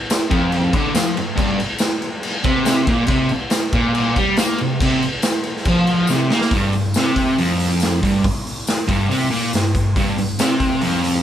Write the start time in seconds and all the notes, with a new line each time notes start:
0.10 snare, tambourine, crash
0.30 F2, kick, crash
0.52 crash
0.73 D3, kick, crash
0.95 F3, snare, tambourine, crash
1.17 G2, crash
1.36 G2, kick, crash
1.60 crash
1.79 snare, tambourine, crash
2.02 crash
2.23 crash
2.44 C3, kick, crash
2.65 snare, tambourine, crash
2.87 A#2, kick, crash
3.07 C3, kick, crash
3.29 muted distorted electric guitar stroke, crash
3.50 snare, tambourine, crash
3.73 A#2, kick, crash
3.95 crash
4.16 G3, kick, crash
4.37 A#3, snare, tambourine, crash
4.58 C3, crash
4.81 C3, kick, crash
5.03 crash
5.22 snare, tambourine, crash
5.44 crash
5.57 snare
5.65 F3, kick, crash
5.87 crash
6.07 C3, snare, tambourine
6.31 A#3, snare
6.41 snare
6.51 G2, kick, open hi-hat
6.73 G2, open hi-hat
6.94 C3, snare, open hi-hat, tambourine
7.07 snare
7.16 kick, open hi-hat
7.38 F2, open hi-hat
7.60 open hi-hat
7.80 snare, open hi-hat, tambourine
8.02 G2, kick, open hi-hat
8.24 kick, open hi-hat
8.47 open hi-hat
8.67 snare, open hi-hat, tambourine
8.87 G2, kick, open hi-hat
9.09 C3, open hi-hat
9.30 A#2, open hi-hat
9.53 G2, snare, open hi-hat, tambourine
9.75 G2, kick, open hi-hat
9.96 G2, kick, open hi-hat
10.18 G2, open hi-hat
10.39 C3, snare, open hi-hat, tambourine
10.60 kick, open hi-hat
10.81 F2, open hi-hat
11.04 open hi-hat